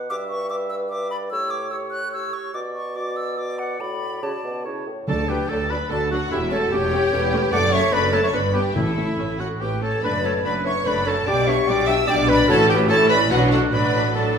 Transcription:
Already playing: oboe F#5
0.10 bassoon G2, clarinet B4, oboe E5, flute D6
0.30 flute C#6
0.50 clarinet B4, oboe E5, flute D6
0.69 flute E6
0.90 clarinet B4, oboe E5, flute D6
1.11 oboe D5, flute B5
1.31 bassoon A2, clarinet G4, oboe C#5, flute E6
1.51 flute D6
1.70 clarinet G4, oboe C#5, flute E6
1.91 flute F#6
2.13 clarinet G4, oboe C#5, flute E6
2.33 flute C#6
2.54 bassoon B2, clarinet F#4, oboe D5, flute D6
2.74 flute C#6
2.95 clarinet F#4, oboe D5, flute D6
3.16 flute E6
3.37 clarinet F#4, oboe D5, flute D6
3.59 flute F#5
3.79 bassoon A2, clarinet F#4, oboe D5, flute B5
4.22 bassoon C#3, clarinet F#4, oboe D5, flute A5
4.44 bassoon B2
4.65 bassoon C#3, clarinet E4, oboe C#5
4.86 bassoon A2
5.08 double bass section D2, cello section D2, timpani D3, viola section F#3 D4, clarinet A4, violin section A4 A5, oboe A4, flute D5
5.28 viola section F#3 D4, violin section G4 G5, clarinet G4, oboe G4, flute B4
5.49 cello section D2, double bass section D2, viola section F#3 D4, clarinet A4, violin section A4 A5, oboe A4, french horn section A4, flute D5
5.69 viola section F#3 D4, violin section B4 B5, clarinet B4, oboe B4, flute D5
5.88 cello section D2, double bass section D2, viola section F#3 D4, french horn section F#4, violin section A4, clarinet A4, oboe A4, flute D5
5.92 violin section A5
6.08 viola section F#3 D4, violin section F#4 F#5, clarinet F#4, oboe F#4, flute A4
6.29 double bass section E1, cello section E2, viola section A3 C#4, violin section E4 E5, oboe E4, clarinet E4, flute G4
6.50 viola section A3 C#4, violin section A4 A5, oboe A4, clarinet A4, flute C#5
6.70 double bass section E1, cello section E2, viola section A3 C#4, violin section G4 G5, french horn section G4, oboe G4, clarinet G4, flute C#5
6.92 viola section A3 C#4
7.12 double bass section E1, cello section E2, viola section A3 C#4, french horn section B4
7.32 viola section A3 C#4
7.52 double bass section F#1, cello section F#2, viola section A3 D4, french horn section A4, violin section D5 D6, clarinet D5, oboe D5, flute F#5
7.71 viola section A3 D4, violin section C#5 C#6, oboe C#5, clarinet C#5, flute E5
7.92 double bass section F#1, cello section F#2, viola section A3 D4, violin section B4 B5, oboe B4, clarinet B4, flute D5
8.12 viola section A3 D4, violin section A4 A5, oboe A4, clarinet A4, flute C#5
8.23 oboe C#5, clarinet C#5, violin section C#5 C#6, flute E5
8.33 double bass section G1, cello section G2, viola section B3 D4, french horn section B4, oboe B4, violin section B4 B5, clarinet B4, flute D5
8.54 viola section B3 D4, oboe G4, violin section G4 G5, clarinet G4, flute B4
8.75 double bass section A1, cello section A2, timpani A2, viola section A3 C#4, violin section E4 E5, oboe E4, clarinet E4, flute A4, french horn section A4
8.97 viola section A3 C#4
9.17 double bass section A1, cello section A2, viola section A3 C#4
9.38 viola section A3 C#4, violin section F#4 F#5, clarinet F#4, oboe F#4, flute A4
9.59 double bass section A1, cello section A2, viola section A3 C#4, violin section G4 G5, clarinet G4, oboe G4, flute B4
9.81 viola section A3 C#4, clarinet A4, violin section A4 A5, oboe A4, flute C#5
10.03 double bass section F#1, cello section F#2, viola section A3 D4, french horn section B4, violin section B4 B5, clarinet B4, oboe B4, flute D5
10.24 viola section A3 D4, clarinet A4, violin section A4 A5, oboe A4, flute C#5
10.44 double bass section F#1, cello section F#2, viola section A3 D4, clarinet B4, violin section B4 B5, oboe B4, flute D5
10.65 viola section A3 D4, clarinet C#5, violin section C#5 C#6, oboe C#5, flute E5
10.85 double bass section F#1, cello section F#2, viola section A3 D4, french horn section A4, clarinet B4, violin section B4 B5, oboe B4, flute D5
11.06 viola section A3 D4, clarinet A4, violin section A4 A5, oboe A4, flute C#5
11.26 double bass section B1, cello section B2, viola section G3 D4, french horn section G4, violin section D5 D6, clarinet D5, oboe D5, flute G5
11.47 viola section G3 D4, violin section C#5 C#6, clarinet C#5, oboe C#5, flute E5
11.67 double bass section B1, cello section B2, viola section G3 D4, clarinet D5, violin section D5 D6, oboe D5, flute G5
11.85 viola section G3 D4, violin section E5 E6, clarinet E5, oboe E5, flute G5
12.06 double bass section B1, cello section B2, viola section G3 D4, french horn section D4, violin section D5 D6, clarinet D5, oboe D5, flute G5
12.27 viola section G3 D4, violin section B4 B5, clarinet B4, oboe B4, flute D5
12.47 double bass section A1, cello section A2, timpani A2, viola section E3 C#4, french horn section F#4, oboe A4, clarinet A4, violin section A4 A5, flute C#5
12.68 clarinet G4, oboe G4, violin section G4 G5, flute B4
12.89 viola section E3 C#4, french horn section E4, violin section A4 A5, clarinet A4, oboe A4, flute C#5
13.09 violin section B4 B5, clarinet B4, oboe B4, flute D5
13.30 double bass section B1, cello section B2, viola section F#3 D4, french horn section D4, violin section F#4 F#5, oboe F#4, clarinet F#4, flute B4
13.51 oboe F#4, clarinet F#4, violin section F#4 F#5, flute A4
13.72 double bass section A1, cello section A2, viola section F#3 D4, french horn section F#4, violin section B4 B5, clarinet B4, oboe B4, flute D5
14.15 viola section F#3 D4, violin section A4 A5, clarinet A4, oboe A4, flute D5

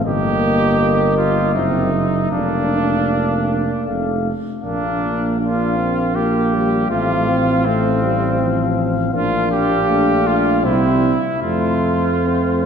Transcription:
0.05 tuba G1, euphonium A#3, french horn A#3, trumpet G4, cornet D#5
1.17 trumpet F4
1.54 tuba F#1, euphonium A#3, french horn C4, trumpet D#4, cornet E5
1.93 french horn A#3
2.31 tuba F1, euphonium A#3, trumpet D4, french horn D4, cornet F5
3.86 tuba F1, euphonium A3, cornet F5
4.64 tuba A#1, french horn A#3, euphonium A#3, trumpet D4, cornet F5
5.40 euphonium A#3, french horn D4, trumpet F4, cornet F5
5.79 french horn C4
6.15 french horn A#3, trumpet G4
6.54 french horn G3
6.90 tuba A1, french horn A3, euphonium C4, trumpet F4, cornet F5
7.29 french horn C4
7.65 french horn A3, trumpet C4, euphonium C4, cornet F5
8.04 french horn G3
8.41 french horn F3
9.14 tuba A#1, euphonium A#3, french horn D4, trumpet F4, cornet F5
9.52 trumpet G4
9.90 euphonium A3
10.27 trumpet F4
10.65 tuba C2, euphonium G3, french horn C4, trumpet E4, cornet C5
11.42 tuba F2, euphonium A3, french horn A3, trumpet F4, cornet C5
12.22 french horn C4
12.62 french horn D4

